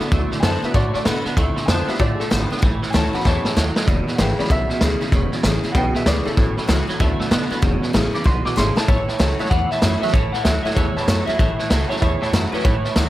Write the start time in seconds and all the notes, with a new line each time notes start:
Already playing: A2 A4
0.00 D3 B3 F#4
0.11 D2 D3 F#3 A3 B3 E4, kick, snare
0.31 D3 A3, muted upright bass stroke, snare
0.40 F#2 D3 A3 B3 C5 G#5, snare, hi-hat pedal
0.44 B3 F#4 A5
0.62 D3 F#3 B3 E4 F#4 B4 E5, muted upright bass stroke, snare
0.74 A2 D3 A3 F#4 D5, kick, snare
0.91 D3 A3 C#5, muted upright bass stroke, snare
0.96 D5
1.05 B2 D3 A3 B3 F#4, snare, hi-hat pedal
1.25 D3 B3 F#4, muted upright bass stroke, snare
1.36 D2 D3 F3 A3 C4 E4, kick, snare
1.56 D3 A3, snare
1.66 F2 D3 A3 B3 G#5, snare, hi-hat pedal
1.70 C4 F4 C5 A5
1.87 D3 F3 B3 C4 E4 F4 G4 E5, muted upright bass stroke, snare
1.94 snare
1.99 A2 D3 A3 F4 D5, kick, snare
2.15 G#4
2.20 D3 A3 A4, muted upright bass stroke, snare
2.30 G#1 D3 A3 B3 C4 F4, snare, hi-hat pedal
2.50 D3 B3 C4 F4, muted upright bass stroke, snare
2.57 snare
2.62 A1 A2 E3, kick, snare
2.82 A2 E3, snare
2.90 D2 A2 E3 A3 G#5, snare, hi-hat pedal
2.94 F#3 C#4 F#4 C#5 A5
3.13 A2 F#3 B3 C#4 F#4 F#5 B5, muted upright bass stroke, snare
3.20 snare
3.25 E2 G#2 A2 E3 C#5 A5, kick, snare
3.45 A2 E3, muted upright bass stroke, snare
3.56 D#2 F#2 A2 F#3, snare, hi-hat pedal
3.76 A2 F#3, snare
3.88 E1 E2 B2, kick, snare
4.07 E2 B2, snare
4.16 G#1 E2 C#3 E3 G#3 B4 F#5, snare, hi-hat pedal
4.20 C#4 E4 G5
4.38 E2 C#3 F#3 G#3 C#4 D5 B5, muted upright bass stroke, snare
4.44 snare
4.50 B1 E2 B2 E5, kick, snare
4.69 E2 B2, muted upright bass stroke, snare
4.81 D2 E2 C#3 E3 G#3 C#4 E4, snare, hi-hat pedal
5.00 E2 C#3 C#4 E4, snare
5.12 E1 E2 B2 F#3 G#3 C#4, kick, snare
5.32 E2 B2, snare
5.43 A1 E2 C#3 E3 G#3 C#4 E4, snare, hi-hat pedal
5.63 E2 C#3 C#4 E4, muted upright bass stroke, snare
5.72 B1 E2 B2 F#3 G#3 C#4 B4 F#5, kick, snare
5.76 G5
5.94 E2 B2 G#4 E5, snare
6.06 D2 E2 C#3 E3 G#3 C#4 E4 B4 D5, snare, hi-hat pedal
6.25 E2 C#3 C#4 E4 A4, muted upright bass stroke, snare
6.36 A1 A2 E3 F#3 B3 C#4, kick, snare
6.57 A2 E3, muted upright bass stroke, snare
6.68 C#2 A2 E3 F#3 A3 C#4 F#4, snare, hi-hat pedal
6.87 A2 F#3 C#4 F#4, snare
6.99 D2 D3 F#3 A3 B3 E4, kick, snare
7.19 D3 A3, snare
7.31 B2 D3 A3 B3 F#4, snare, hi-hat pedal
7.50 D3 B3 F#4, muted upright bass stroke, snare
7.62 E1 E2 B2 F#3 G#3 C#4, kick, snare
7.82 E2 B2, muted upright bass stroke, snare
7.93 A1 E2 C#3 E3 G#3 C#4 E4, snare, hi-hat pedal
8.13 E2 C#3 C#4 E4 D6, muted upright bass stroke, snare
8.24 B1 E2 B2 C6, kick, snare
8.45 E2 B2 D6, muted upright bass stroke, snare
8.56 G#1 E2 C#3 E3 G#3 C#4 E4 C6, snare, hi-hat pedal
8.76 E2 C#3 C#4 E4 A5, muted upright bass stroke, snare
8.88 A1 A2 E3 C#5 E5 A5, kick, snare
9.08 A2 E3 C#5 E5 A5, muted upright bass stroke, snare
9.19 C#2 A2 E3 F#3 A3 C#4 F#4 C#5 E5 A5, snare, hi-hat pedal
9.39 A2 F#3 C#4 F#4 C#5 E5 A5, snare
9.45 snare
9.50 E2 A2 E3 F#5 A5, kick, snare
9.71 A2 E3 C#5 E5 A5, muted upright bass stroke, snare
9.82 F#2 A2 E3 F#3 A3 C#4 F#4 C#5 E5 B5, snare, hi-hat pedal
10.01 A2 F#3 F#4 C#5 E5 A5, muted upright bass stroke, snare
10.05 C#4, snare
10.13 A1 A2 E3 C#5 E5 A5, kick, snare
10.32 A2 E3 C#5 E5 F#5 A5, snare
10.43 D2 A2 E3 F#3 A3 C#5 E5 A5, snare, hi-hat pedal
10.47 C#4 F#4
10.63 A2 F#3 F#4 C#5 E5 F#5, snare
10.67 C#4, snare
10.75 E2 A2 E3 C#5 E5 A5, kick, snare
10.96 A2 E3 C#5 E5 A5, muted upright bass stroke, snare
11.07 F#2 A2 E3 F#3 A3 C#4 F#4 C#5 E5 A5, snare, hi-hat pedal
11.26 A2 F#3 C#4 F#4 C#5 E5 A5, muted upright bass stroke, snare
11.38 A1 A2 E3 C#5 E5 A5, kick, snare
11.58 A2 E3 C#5 E5 A5, muted upright bass stroke, snare
11.69 C#2 A2 E3 F#3 A3 C#4 C#5 E5 A5, snare, hi-hat pedal
11.73 F#4
11.88 A2 F#3 F#4 C#5 E5 A5, snare
11.93 C#4, snare
12.01 E2 A2 E3 C#5 E5 A5, kick, snare
12.21 A2 E3 C#5 E5 A5, snare
12.32 F#2 A2 E3 F#3 A3 C#4 F#4 C#5 E5 A5, snare, hi-hat pedal
12.52 A2 F#3 C#4 F#4 B4 C#5 E5 A5, muted upright bass stroke, snare
12.59 snare
12.64 A1 A2 E3 C#5 E5 A5, kick, snare
12.84 A2 E3 C#5 E5 A5, muted upright bass stroke, snare
12.96 D2 A2 E3 F#3 A3 C#4 F#4 C#5 E5 A5, snare, hi-hat pedal